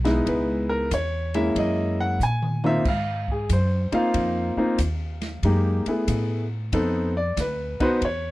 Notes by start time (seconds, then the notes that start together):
Already playing: B1
0.04 G#3 B3 D#4 E4, snare, ride
0.26 C#2 B4, kick, ride
0.69 A#4
0.91 E2 C#5, kick, hi-hat pedal, ride
1.34 G#3 A#3 C#4 E4 E5, ride
1.55 F#2 D#5, kick, ride
2.00 F#5
2.19 A#2 G#5, hi-hat pedal
2.42 mid tom
2.64 A#3 C4 D#4 F4 E5, mid tom
2.85 G#2 F5, kick, crash
3.28 G#4, kick
3.49 F#2 C5, kick, hi-hat pedal, ride
3.92 A#3 C4 D#4 F4 F5, muted upright bass stroke, ride
4.14 F2, kick, ride
4.56 A#3 C4 D#4 F4, muted upright bass stroke
4.78 D#2, kick, hi-hat pedal, ride
5.22 snare, ride
5.43 F#2 G#3 A#3 D#4 G4, kick, ride
5.86 A3 B3 E4 G#4, muted upright bass stroke, ride
6.07 A2, kick, hi-hat pedal, ride
6.72 F2 B3 C4 D#4 A4, kick, ride
7.17 D5
7.37 D2 B4, kick, snare, hi-hat pedal, ride
7.80 B3 D#4 F#4 B4 C5, muted upright bass stroke, kick, ride
8.01 E2 C#5, kick, ride